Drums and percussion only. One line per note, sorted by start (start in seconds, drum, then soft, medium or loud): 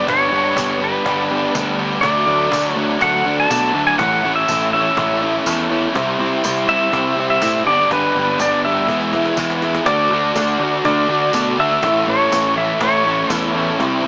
0.08 cajon bass loud
0.08 cajon slap loud
0.57 cajon bass loud
0.57 cajon slap loud
0.57 tambourine medium
1.06 cajon bass loud
1.06 cajon slap loud
1.55 cajon bass loud
1.55 cajon slap loud
1.55 tambourine loud
2.03 cajon bass loud
2.03 cajon slap loud
2.52 cajon bass medium
2.52 cajon slap loud
2.52 tambourine medium
3.01 cajon bass loud
3.01 cajon slap loud
3.51 cajon bass loud
3.51 cajon slap loud
3.51 tambourine loud
3.99 cajon bass loud
3.99 cajon slap loud
4.48 cajon bass loud
4.48 cajon slap loud
4.48 tambourine medium
4.97 cajon bass loud
4.97 cajon slap loud
5.46 cajon bass loud
5.46 cajon slap loud
5.46 tambourine loud
5.95 cajon bass loud
5.95 cajon slap loud
6.44 cajon bass loud
6.44 cajon slap loud
6.44 tambourine loud
6.93 cajon bass loud
6.93 cajon slap loud
7.42 cajon bass loud
7.42 cajon slap loud
7.42 tambourine medium
7.91 cajon bass loud
7.91 cajon slap loud
8.39 cajon bass medium
8.39 cajon slap loud
8.39 tambourine medium
8.88 cajon bass loud
8.88 cajon slap medium
9.01 cajon slap medium
9.13 cajon slap medium
9.25 cajon slap medium
9.37 cajon bass loud
9.37 cajon slap medium
9.37 tambourine medium
9.50 cajon slap medium
9.62 cajon slap medium
9.75 cajon slap loud
9.86 cajon bass loud
9.86 cajon slap loud
10.35 cajon bass loud
10.35 cajon slap loud
10.35 tambourine medium
10.85 cajon bass loud
10.85 cajon slap loud
11.33 cajon bass loud
11.33 cajon slap loud
11.33 tambourine medium
11.83 cajon bass loud
11.83 cajon slap loud
12.32 cajon bass loud
12.32 cajon slap loud
12.32 tambourine medium
12.81 cajon bass loud
12.81 cajon slap loud
13.30 cajon bass loud
13.30 cajon slap loud
13.30 tambourine loud
13.80 cajon bass loud
13.80 cajon slap loud